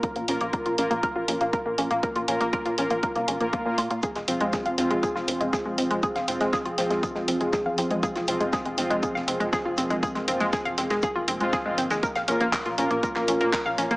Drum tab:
HH |xxoxxxoxx-oxx-ox|xxoxxxoxxxoxx-ox|xxoxxxoxx-oxx-ox|xxoxxxoxx-oxx-ox|
SH |----------------|----------------|x-x-x-x-x-x-x-x-|x-x-x-x-x-x-x-x-|
CP |----------------|----------------|----------------|----------------|
SD |----------------|----------------|-o--o----o--o---|-o-oo-oo-o--o---|
BD |o---o---o---o---|o---o---o---o---|o---o---o---o---|o---o---o---o---|

HH |xxoxxxoxx-oxx-ox|xxoxxxoxx-oxx-ox|xxoxxxoxx-oxx-ox|
SH |x-x-x-x-x-x-x-x-|x-x-x-x-x-x-x-xx|x-x-x-x-x-x-x-x-|
CP |----------------|----------------|----x----x--x---|
SD |-o--o----o--o---|-o-oo-oo----o--o|-o--o----o--o---|
BD |o---o---o---o---|o---o---o---o---|o---o---o---o---|